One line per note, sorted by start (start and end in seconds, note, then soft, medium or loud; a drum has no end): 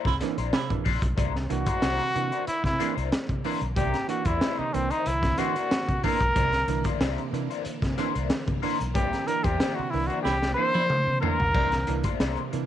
0.05 0.19 C2 loud
0.05 0.16 E4 loud
0.05 kick loud
0.05 snare soft
0.21 0.37 E3 loud
0.21 0.37 A#3 medium
0.21 0.37 D4 loud
0.21 muted clean electric guitar stroke soft
0.21 snare soft
0.21 closed hi-hat medium
0.38 0.51 A#1 medium
0.38 0.51 A#3 medium
0.38 0.51 D4 medium
0.38 0.51 E4 medium
0.38 0.51 C5 medium
0.38 closed hi-hat medium
0.53 0.69 C3 medium
0.53 0.74 E4 medium
0.53 muted clean electric guitar stroke soft
0.53 snare loud
0.70 0.84 A#1 medium
0.70 0.84 E3 medium
0.70 0.84 A#3 medium
0.70 0.84 D4 medium
0.70 kick medium
0.70 closed hi-hat soft
0.84 1.01 A#1 medium
0.84 0.99 A#3 medium
0.84 0.93 A#3 soft
0.84 1.00 D4 medium
0.84 0.93 D4 soft
0.84 1.00 E4 medium
0.84 1.00 C5 medium
0.84 kick medium
0.84 open hi-hat medium
1.02 1.16 B1 medium
1.02 muted clean electric guitar stroke soft
1.02 kick loud
1.02 closed hi-hat medium
1.16 1.46 C2 loud
1.16 1.33 C3 medium
1.16 12.66 D3 medium
1.16 12.66 E3 medium
1.16 1.35 A#3 medium
1.16 12.66 A#3 medium
1.16 1.34 D4 medium
1.16 1.33 E4 medium
1.16 1.33 C5 medium
1.16 kick loud
1.16 closed hi-hat medium
1.34 1.41 A#3 soft
1.34 1.41 D4 soft
1.34 muted clean electric guitar stroke soft
1.34 snare soft
1.49 1.66 C2 loud
1.49 1.65 E3 medium
1.49 1.66 A#3 medium
1.49 1.66 D4 medium
1.49 2.44 F#4 loud
1.49 muted clean electric guitar stroke soft
1.49 closed hi-hat medium
1.66 1.80 A#3 medium
1.66 1.80 D4 medium
1.66 1.80 E4 medium
1.66 1.80 C5 medium
1.66 kick medium
1.66 closed hi-hat medium
1.82 1.98 C2 loud
1.82 2.01 A#3 medium
1.82 1.90 A#3 soft
1.82 2.01 D4 medium
1.82 1.90 D4 soft
1.82 2.01 E4 medium
1.82 2.01 C5 medium
1.82 snare loud
1.82 closed hi-hat medium
1.99 2.14 C3 medium
1.99 closed hi-hat soft
2.14 2.30 C3 medium
2.14 2.31 E3 medium
2.14 2.31 A#3 medium
2.14 2.31 D4 medium
2.14 muted clean electric guitar stroke soft
2.14 closed hi-hat medium
2.31 2.45 A#3 medium
2.31 2.45 D4 soft
2.31 2.45 E4 medium
2.31 2.45 C5 medium
2.31 closed hi-hat soft
2.46 2.63 E4 medium
2.46 muted clean electric guitar stroke soft
2.46 muted fingered electric bass stroke soft
2.46 closed hi-hat medium
2.64 2.78 C3 loud
2.64 2.95 E4 medium
2.64 muted clean electric guitar stroke soft
2.64 kick medium
2.64 snare soft
2.64 closed hi-hat soft
2.79 2.95 E3 medium
2.79 2.94 A#3 medium
2.79 2.95 A#3 medium
2.79 2.94 D4 medium
2.79 2.96 D4 loud
2.79 2.94 E4 medium
2.79 2.94 C5 medium
2.79 snare soft
2.79 closed hi-hat medium
2.96 3.11 C2 medium
2.96 3.10 A#3 soft
2.96 3.09 D4 medium
2.96 3.09 E4 medium
2.96 3.09 C5 medium
2.96 closed hi-hat soft
3.12 snare loud
3.12 closed hi-hat loud
3.29 3.43 C3 medium
3.29 muted clean electric guitar stroke soft
3.29 kick medium
3.29 closed hi-hat soft
3.44 3.60 E3 medium
3.44 3.63 A#3 medium
3.44 3.60 A#3 medium
3.44 3.60 D4 medium
3.44 3.61 D4 medium
3.44 3.61 E4 medium
3.44 3.60 C5 medium
3.44 open hi-hat medium
3.61 3.76 B1 medium
3.61 muted clean electric guitar stroke soft
3.61 closed hi-hat soft
3.76 3.92 C2 loud
3.76 3.92 C3 medium
3.76 3.95 A#3 medium
3.76 3.95 D4 medium
3.76 3.94 E4 medium
3.76 4.07 G4 medium
3.76 3.93 C5 medium
3.76 kick loud
3.76 closed hi-hat medium
3.94 4.00 A#3 soft
3.94 4.00 D4 medium
3.94 muted clean electric guitar stroke soft
3.94 snare soft
3.94 closed hi-hat soft
4.08 4.24 E3 medium
4.08 4.24 A#3 medium
4.08 4.25 D4 medium
4.08 4.27 F#4 medium
4.08 muted clean electric guitar stroke soft
4.08 closed hi-hat medium
4.25 4.39 E2 medium
4.25 4.40 A#3 medium
4.25 4.40 D4 medium
4.25 4.60 E4 medium
4.25 4.40 E4 medium
4.25 4.40 C5 medium
4.25 kick medium
4.25 closed hi-hat medium
4.41 4.49 A#3 soft
4.41 4.63 A#3 medium
4.41 4.49 D4 soft
4.41 4.63 D4 medium
4.41 4.63 E4 medium
4.41 4.63 C5 medium
4.41 snare loud
4.41 closed hi-hat medium
4.58 4.73 C3 soft
4.58 4.75 D#4 medium
4.58 muted fingered electric bass stroke soft
4.73 4.90 C2 loud
4.73 4.89 E3 medium
4.73 4.89 A#3 medium
4.73 4.92 C4 medium
4.73 4.90 D4 medium
4.73 muted clean electric guitar stroke soft
4.73 closed hi-hat medium
4.90 5.05 A#3 medium
4.90 5.04 D4 medium
4.90 5.08 D#4 medium
4.90 5.04 E4 medium
4.90 5.04 C5 medium
4.90 closed hi-hat soft
5.06 5.35 C2 medium
5.06 5.40 E4 medium
5.06 muted clean electric guitar stroke soft
5.06 closed hi-hat medium
5.23 muted clean electric guitar stroke soft
5.23 kick medium
5.23 snare soft
5.23 closed hi-hat soft
5.38 5.54 E3 loud
5.38 5.53 A#3 medium
5.38 5.54 A#3 medium
5.38 5.53 D4 medium
5.38 5.54 D4 loud
5.38 5.53 E4 medium
5.38 6.03 F#4 loud
5.38 5.54 C5 medium
5.38 snare soft
5.38 closed hi-hat medium
5.56 5.69 A#3 medium
5.56 5.69 D4 medium
5.56 5.69 E4 medium
5.56 5.69 C5 medium
5.56 closed hi-hat soft
5.71 snare loud
5.71 closed hi-hat medium
5.89 6.02 C3 loud
5.89 muted clean electric guitar stroke soft
5.89 kick loud
5.89 closed hi-hat soft
6.03 6.19 E3 medium
6.03 6.22 A#3 medium
6.03 6.19 A#3 medium
6.03 6.21 D4 medium
6.03 6.19 D4 medium
6.03 6.20 E4 medium
6.03 6.97 A#4 loud
6.03 6.20 C5 medium
6.03 kick medium
6.03 open hi-hat medium
6.21 6.34 B1 medium
6.21 muted clean electric guitar stroke soft
6.21 kick medium
6.21 closed hi-hat soft
6.35 6.64 C2 loud
6.35 6.52 C3 medium
6.35 6.54 A#3 medium
6.35 6.53 D4 medium
6.35 6.52 E4 medium
6.35 6.52 C5 medium
6.35 kick loud
6.35 closed hi-hat medium
6.53 6.60 A#3 soft
6.53 6.60 D4 soft
6.53 muted clean electric guitar stroke medium
6.53 snare soft
6.53 closed hi-hat soft
6.68 6.83 C2 loud
6.68 6.84 E3 medium
6.68 6.84 A#3 medium
6.68 6.84 D4 medium
6.68 muted clean electric guitar stroke soft
6.68 closed hi-hat medium
6.84 6.99 A#3 medium
6.84 6.99 D4 medium
6.84 6.99 E4 medium
6.84 6.99 C5 medium
6.84 kick medium
6.84 closed hi-hat medium
7.00 7.16 C2 loud
7.00 7.19 A#3 medium
7.00 7.08 A#3 soft
7.00 7.08 D4 soft
7.00 7.19 D4 medium
7.00 7.20 E4 medium
7.00 7.20 C5 medium
7.00 snare loud
7.00 closed hi-hat medium
7.18 7.32 C3 medium
7.18 closed hi-hat soft
7.33 7.48 C3 medium
7.33 7.49 E3 medium
7.33 7.49 A#3 medium
7.33 7.49 D4 medium
7.33 muted clean electric guitar stroke soft
7.33 closed hi-hat medium
7.50 7.64 A#3 medium
7.50 7.64 D4 medium
7.50 7.64 E4 medium
7.50 7.63 C5 medium
7.50 closed hi-hat soft
7.65 muted clean electric guitar stroke soft
7.65 muted fingered electric bass stroke soft
7.65 closed hi-hat medium
7.82 7.96 C3 loud
7.82 muted clean electric guitar stroke soft
7.82 kick medium
7.82 snare soft
7.82 closed hi-hat soft
7.98 8.14 E3 medium
7.98 8.12 A#3 medium
7.98 8.14 A#3 medium
7.98 8.13 D4 medium
7.98 8.14 D4 loud
7.98 8.13 E4 medium
7.98 8.13 C5 medium
7.98 snare soft
7.98 closed hi-hat medium
8.15 8.29 C2 medium
8.15 8.29 A#3 medium
8.15 8.28 D4 medium
8.15 8.28 E4 medium
8.15 8.28 C5 medium
8.15 closed hi-hat soft
8.30 snare loud
8.30 closed hi-hat medium
8.47 8.61 C3 medium
8.47 muted clean electric guitar stroke soft
8.47 kick medium
8.47 closed hi-hat soft
8.62 8.79 E3 medium
8.62 8.81 A#3 medium
8.62 8.79 A#3 medium
8.62 8.79 D4 medium
8.62 8.79 D4 loud
8.62 8.78 E4 medium
8.62 8.78 C5 loud
8.62 open hi-hat medium
8.79 8.95 B1 medium
8.79 muted clean electric guitar stroke soft
8.79 closed hi-hat soft
8.94 9.10 C2 loud
8.94 9.11 C3 medium
8.94 9.16 A#3 medium
8.94 9.11 D4 medium
8.94 9.11 E4 medium
8.94 9.28 G4 medium
8.94 9.11 C5 medium
8.94 kick loud
8.94 closed hi-hat medium
9.12 9.19 A#3 soft
9.12 9.19 D4 soft
9.12 muted clean electric guitar stroke soft
9.12 snare soft
9.12 closed hi-hat soft
9.27 9.43 E3 medium
9.27 9.43 A#3 medium
9.27 9.43 D4 medium
9.27 9.45 A#4 medium
9.27 muted clean electric guitar stroke soft
9.27 closed hi-hat medium
9.44 9.58 E2 medium
9.44 9.58 A#3 medium
9.44 9.57 D4 medium
9.44 9.57 E4 medium
9.44 9.77 G4 medium
9.44 9.57 C5 medium
9.44 kick loud
9.44 closed hi-hat medium
9.60 9.78 A#3 medium
9.60 9.67 A#3 soft
9.60 9.78 D4 medium
9.60 9.68 D4 soft
9.60 9.79 E4 medium
9.60 9.79 C5 loud
9.60 snare loud
9.60 closed hi-hat medium
9.75 9.91 C3 medium
9.75 9.92 F#4 medium
9.75 muted fingered electric bass stroke soft
9.90 10.08 C2 medium
9.90 10.09 E3 medium
9.90 10.09 A#3 medium
9.90 10.09 D4 medium
9.90 10.08 E4 medium
9.90 muted clean electric guitar stroke soft
9.90 open hi-hat soft
10.07 10.23 D4 medium
10.07 10.23 E4 medium
10.07 10.22 F#4 medium
10.07 10.23 C5 medium
10.07 closed hi-hat soft
10.11 10.23 A#3 medium
10.22 10.54 C2 medium
10.22 10.36 E4 medium
10.22 10.54 G4 medium
10.22 muted clean electric guitar stroke soft
10.22 snare medium
10.41 muted clean electric guitar stroke soft
10.41 snare medium
10.54 10.73 E3 loud
10.54 10.71 A#3 medium
10.54 10.73 A#3 medium
10.54 10.72 D4 medium
10.54 10.72 E4 medium
10.54 11.17 C5 loud
10.54 10.72 C5 medium
10.59 10.74 D4 medium
10.73 10.87 A#3 medium
10.73 10.87 D4 medium
10.73 10.84 E4 medium
10.73 10.87 E4 medium
10.73 10.87 C5 medium
10.73 high tom medium
10.90 mid tom medium
11.07 11.21 C3 loud
11.07 muted clean electric guitar stroke soft
11.20 11.38 E3 medium
11.20 11.40 A#3 medium
11.20 11.38 A#3 medium
11.20 11.38 D4 medium
11.20 11.38 E4 medium
11.20 12.15 A#4 loud
11.20 11.38 C5 medium
11.20 floor tom loud
11.39 11.53 B1 medium
11.39 muted clean electric guitar stroke soft
11.39 floor tom medium
11.54 11.83 C2 loud
11.54 11.71 C3 medium
11.54 11.73 A#3 medium
11.54 11.72 D4 medium
11.54 11.71 E4 medium
11.54 11.70 C5 medium
11.54 kick loud
11.54 splash medium
11.72 11.79 A#3 soft
11.72 11.79 D4 soft
11.72 muted clean electric guitar stroke medium
11.72 snare soft
11.72 closed hi-hat soft
11.87 12.03 C2 loud
11.87 12.03 E3 medium
11.87 12.03 A#3 medium
11.87 12.04 D4 medium
11.87 muted clean electric guitar stroke soft
11.87 closed hi-hat medium
12.04 12.18 A#3 medium
12.04 12.18 D4 medium
12.04 12.17 E4 medium
12.04 12.17 C5 medium
12.04 kick loud
12.04 closed hi-hat medium
12.19 12.35 C2 medium
12.19 12.38 A#3 medium
12.19 12.28 A#3 soft
12.19 12.38 D4 medium
12.19 12.28 D4 soft
12.19 12.38 E4 medium
12.19 12.38 C5 medium
12.19 snare loud
12.19 closed hi-hat medium
12.36 12.51 C3 medium
12.36 closed hi-hat soft
12.52 12.66 C3 medium
12.52 12.66 E3 medium
12.52 12.66 A#3 medium
12.52 12.66 D4 medium
12.52 muted clean electric guitar stroke soft
12.52 closed hi-hat medium